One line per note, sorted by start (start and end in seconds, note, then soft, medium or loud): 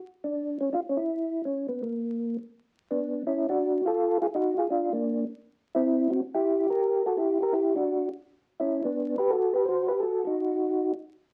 0.24 0.58 D4 medium
0.61 0.69 C#4 medium
0.73 0.75 D4 medium
0.73 0.80 F4 medium
0.89 0.98 C#4 medium
0.97 1.42 E4 medium
1.45 1.67 C#4 medium
1.69 1.81 B3 medium
1.83 2.37 A#3 medium
2.91 3.23 B3 medium
2.91 3.23 D4 medium
3.27 3.47 C#4 medium
3.27 3.47 E4 medium
3.49 3.81 D4 medium
3.49 3.85 F#4 medium
3.86 4.18 F4 medium
3.86 4.18 A4 medium
4.22 4.27 F4 medium
4.22 4.27 G#4 loud
4.35 4.54 D#4 medium
4.35 4.57 F#4 medium
4.58 4.67 F4 medium
4.58 4.69 G#4 medium
4.70 4.90 D4 medium
4.70 4.93 F4 medium
4.93 5.24 A#3 medium
4.93 5.25 D4 medium
5.75 6.08 C4 medium
5.75 6.11 E4 medium
6.10 6.21 C4 medium
6.10 6.20 F#4 medium
6.34 6.67 E4 medium
6.34 6.69 G4 medium
6.70 7.03 G4 medium
6.70 7.06 A#4 medium
7.06 7.17 F#4 medium
7.06 7.18 A4 medium
7.17 7.38 E4 medium
7.17 7.40 G4 medium
7.42 7.52 G4 medium
7.42 7.54 A#4 medium
7.53 7.74 E4 medium
7.53 7.74 G4 medium
7.76 8.09 D4 medium
7.76 8.09 F#4 medium
8.60 8.81 C#4 medium
8.60 8.83 E4 medium
8.84 9.17 B3 medium
8.84 9.16 D4 medium
9.18 9.30 G4 medium
9.18 9.31 B4 medium
9.30 9.53 F#4 medium
9.30 9.54 A4 medium
9.54 9.66 G4 medium
9.54 9.65 B4 medium
9.65 9.89 F#4 medium
9.65 9.87 C5 medium
9.88 10.01 G4 medium
9.88 10.00 B4 medium
10.00 10.24 F#4 medium
10.00 10.24 A4 medium
10.25 10.93 D#4 medium
10.25 10.92 F#4 medium